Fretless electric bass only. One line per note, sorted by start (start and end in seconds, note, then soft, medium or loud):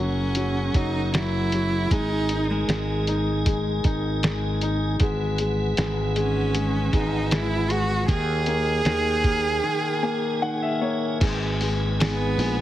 0.00 0.70 F#1 medium
0.74 1.87 F#1 medium
1.91 2.65 G#1 medium
2.68 3.81 G#1 medium
3.84 4.96 G#1 medium
5.00 5.73 G#1 medium
5.78 6.89 G#1 loud
6.93 8.05 G#1 medium
8.08 8.81 D#2 loud
8.85 9.59 D#2 medium
11.21 12.34 G#1 loud
12.38 12.61 A#1 medium